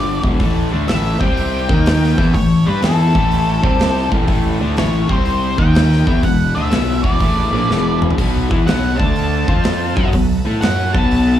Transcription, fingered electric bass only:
Already playing: G1
0.23 E1
0.40 A1
0.73 D2
0.89 A1
1.21 C2
1.69 D#2
2.18 E2
2.34 A1
2.67 G2
2.83 E2
3.15 A1
3.64 C2
4.12 A1
4.28 A1
4.61 D2
4.78 A1
5.09 C2
5.58 D#2
6.07 E2
6.23 E1
6.56 D2
6.72 B1
7.04 E1
7.21 A1
7.52 A#1
7.69 E1
8.18 B1
8.51 E2
8.66 B1
8.99 D2
9.48 F2
9.97 F#2
10.14 B1
10.46 A2
10.62 F#2
10.95 B1

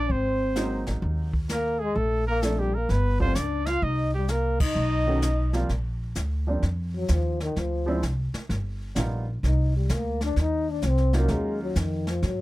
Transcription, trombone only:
Already playing: D4
0.11 C4
1.52 A#3
1.82 G#3
1.97 A3
2.28 A#3
2.45 A3
2.61 G3
2.76 A#3
2.91 B3
3.23 C4
3.39 D4
3.69 F4
3.85 D#4
4.16 G3
4.31 A#3
4.62 D#4
6.96 F#3
7.12 F3
7.42 D#3
7.59 F3
9.46 D#4
9.76 G3
9.93 A#3
10.24 D4
10.40 D#4
10.70 D4
10.87 C4
11.16 A#3
11.32 G#3
11.62 F#3
11.79 D#3
12.09 F3
12.26 F#3

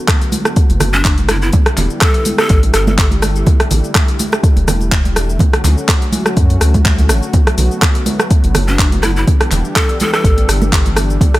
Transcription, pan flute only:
0.94 D4
1.29 E4
1.42 E4
2.01 A4
2.39 A4
2.75 A4
2.88 A4
2.99 A4
8.68 D4
9.03 E4
9.17 E4
9.76 A4
10.01 A4
10.13 A4

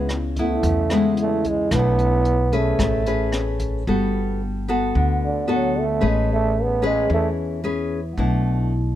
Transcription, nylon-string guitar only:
Already playing: C#3
0.39 B3 E4
0.64 C#3
0.92 G#3 B3 E4
1.72 B2 A3 D4 E4
2.53 C#4 G#4 B4
2.79 A3
3.06 C#4 G#4 B4
3.87 G3 B3 F#4 A4
4.68 B3 F#4 A4
4.96 D3
5.48 B3 F#4 A4
6.01 A3 C#4 G#4 B4
6.82 C#4 G#4 B4
7.10 E3
7.64 C#4 G#4 B4
8.17 B2 A3 D4 E4

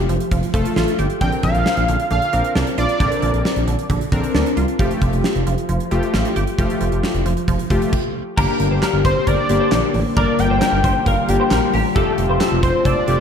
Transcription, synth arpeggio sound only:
0.09 F3
0.32 F3
0.54 F3
0.76 F4
0.99 G4
1.21 D3
1.44 D3
1.88 D3
2.11 D3
2.33 D3
2.55 D4
2.78 F4
3.00 D3
3.23 D3
3.67 D3
3.90 D3
4.12 D3
4.35 D4
4.57 F4
4.79 F3
5.02 F3
5.47 F3
5.69 F3
5.91 F3
6.14 F4
6.36 G4
6.59 F3
6.81 F3
7.26 F3
7.48 F3
7.71 F3

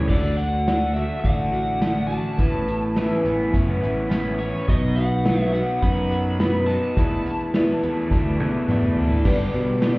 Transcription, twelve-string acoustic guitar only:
Already playing: G3 C#4 E4
0.11 D3 A3 D4 F#4
0.39 A3 D4 F#4
0.67 D3 A3 D4 F#4
0.96 A3 D4 F#4
1.25 D3 A3 D4 F#4
1.51 A3 D4 F#4
1.81 D3 A3 D4 F#4
2.08 A3 D4 F#4
2.36 A2 E3 B3 C#4 E4
2.66 B3 C#4 E4
2.97 A2 E3 B3 C#4 E4
3.25 B3 C#4 E4
3.52 E3 B3 C#4 E4
3.82 B3 C#4 E4
4.08 A2 E3 B3 C#4 E4
4.38 B3 C#4 E4
4.67 B2 F#3 B3 D#4 F#4
4.97 B3 D#4 F#4
5.24 B2 F#3 B3 D#4 F#4
5.53 B3 D#4 F#4
5.82 F#3 B3 D#4 F#4
6.10 B3 D#4 F#4
6.40 B2 F#3 B3 D#4 F#4
6.68 B3 D#4 F#4
6.97 E2 B2 E3 A3 D4 E4
7.24 E3 A3 D4 E4
7.55 E2 B2 E3 A3 D4 E4
7.83 E3 A3 D4 E4
8.12 E3 A3 D4 E4
8.41 E3 A3 D4 E4
8.69 E2 B2 E3 A3 D4 E4
8.98 E3 A3 D4 E4
9.26 G2 D3 G3 B3 D4 G4
9.56 G3 B3 D4 G4
9.84 G2 D3 G3 B3 D4 G4

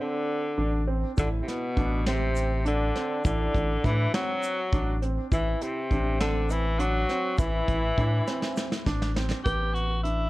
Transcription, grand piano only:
0.00 C4
0.58 D4
0.87 C4
1.17 E4
1.77 D4
2.06 C4
2.65 D4
2.95 C4
3.25 E4
3.84 D4
4.13 C4
4.73 D4
5.02 C4
5.32 E4
5.91 D4
6.20 C4
6.79 D4
7.09 C4
7.39 E4
7.98 D4
8.27 C4
8.86 D4
9.16 C4
9.45 B3
10.04 D4

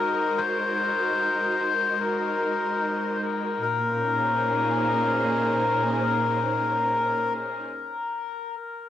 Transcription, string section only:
Already playing: G#3 D#4 F#4 A#4 D#5
3.62 A#2
3.77 A#3
3.90 C#4
3.99 D#4
4.13 G#4
4.27 C5

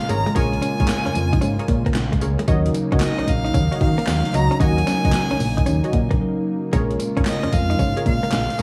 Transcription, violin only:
Already playing: F5
0.10 A#5
0.37 G#5
3.03 D#5
3.29 F5
3.82 F5
4.35 A#5
4.61 G#5
7.28 D#5
7.54 F5
8.07 F5

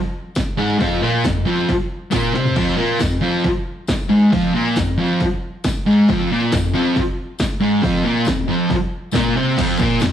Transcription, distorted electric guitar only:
0.58 G#2 G#3
0.79 F2 F3
1.02 A#2 A#3
1.25 F2
1.46 F2 F3
2.11 A#2 A#3
2.33 C3 C4
2.56 F2 F3
2.77 A#2 A#3
2.99 F2
3.21 F2 F3
4.09 G#2 G#3
4.31 F2 F3
4.54 A#2 A#3
4.75 F2
4.98 F2 F3
5.87 G#2 G#3
6.10 F2 F3
6.32 A#2 A#3
6.52 F2
6.73 F2 F3
7.60 G#2 G#3
7.82 F2 F3
8.04 A#2 A#3
8.27 F2
8.48 F2 F3
9.13 A#2 A#3
9.36 C3 C4
9.56 F2 F3
9.78 A#2 A#3
10.01 F2

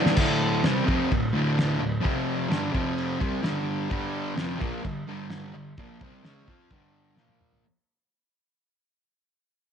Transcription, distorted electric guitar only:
Already playing: D2 A2 D3
0.16 D2 A2 D3
0.64 C3 G3 C4
0.85 F2 C3 F3
1.12 D2 A2
1.33 D2 A2 D3
1.79 D2 A2
2.01 F2 C3 F3
2.49 G2 D3 G3
2.72 F2 C3 F3
3.20 C3 G3 C4
3.43 G2 D3 G3
3.90 G2 D3 G3
4.36 F2 C3 F3
4.58 A#2 F3 A#3
4.84 G2 D3
5.08 G2 D3 G3
5.54 G2 D3
5.79 A#2 F3 A#3
6.01 C3 G3 C4
6.24 C#3 G#3 C#4
6.47 F3 C4 F4
6.71 G2 D3 G3
7.16 A#2 F3 A#3

